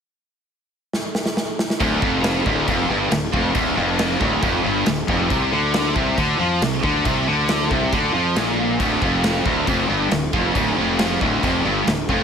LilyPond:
<<
  \new Staff \with { instrumentName = "Distorted electric guitar" } { \clef bass \time 4/4 \key d \minor \tempo 4 = 137 r1 | d,8 f,4 d,8 f,8 g,8 d,8 f,8 | d,8 f,4 d,8 f,8 g,8 d,8 f,8 | c8 d4 c8 d8 f8 c8 d8 |
c8 d4 c8 d8 f8 bes,4 | d,8 f,4 d,8 f,8 g,8 d,8 f,8 | d,8 f,4 d,8 f,8 g,8 d,8 f,8 | }
  \new Staff \with { instrumentName = "Distorted electric guitar" } { \clef bass \time 4/4 \key d \minor r1 | d,8 f,4 d,8 f,8 g,8 d,8 f,8 | d,8 f,4 d,8 f,8 g,8 d,8 f,8 | c8 d4 c8 d8 f8 c8 d8 |
c8 d4 c8 d8 f8 bes,4 | d,8 f,4 d,8 f,8 g,8 d,8 f,8 | d,8 f,4 d,8 f,8 g,8 d,8 f,8 | }
  \new Staff \with { instrumentName = "Distorted electric guitar" } { \clef bass \time 4/4 \key d \minor r1 | d,8 f,4 d,8 f,8 g,8 d,8 f,8 | d,8 f,4 d,8 f,8 g,8 d,8 f,8 | c8 d4 c8 d8 f8 c8 d8 |
c8 d4 c8 d8 f8 bes,4 | d,8 f,4 d,8 f,8 g,8 d,8 f,8 | d,8 f,4 d,8 f,8 g,8 d,8 f,8 | }
  \new Staff \with { instrumentName = "Fingered electric bass" } { \clef bass \time 4/4 \key d \minor r1 | d,,8 f,,4 d,,8 f,,8 g,,8 d,,8 f,,8 | d,,8 f,,4 d,,8 f,,8 g,,8 d,,8 f,,8 | c,8 d,4 c,8 d,8 f,8 c,8 d,8 |
c,8 d,4 c,8 d,8 f,8 bes,,4 | d,,8 f,,4 d,,8 f,,8 g,,8 d,,8 f,,8 | d,,8 f,,4 d,,8 f,,8 g,,8 d,,8 f,,8 | }
  \new DrumStaff \with { instrumentName = "Drums" } \drummode { \time 4/4 r4 r4 sn8 sn16 sn16 sn8 sn16 sn16 | <cymc bd>8 bd8 <cymc sn>8 bd8 <cymc bd>4 <cymc sn>8 bd8 | <cymc bd>4 <cymc sn>8 bd8 <cymc bd>4 <cymc sn>8 bd8 | <cymc bd>4 <cymc sn>8 bd8 <cymc bd>4 <cymc sn>8 bd8 |
<cymc bd>4 <cymc sn>8 bd8 <cymc bd>4 <cymc sn>4 | <cymc bd>8 bd8 <cymc sn>8 bd8 <cymc bd>4 <cymc sn>8 bd8 | <cymc bd>4 <cymc sn>8 bd8 <cymc bd>4 <cymc sn>8 bd8 | }
>>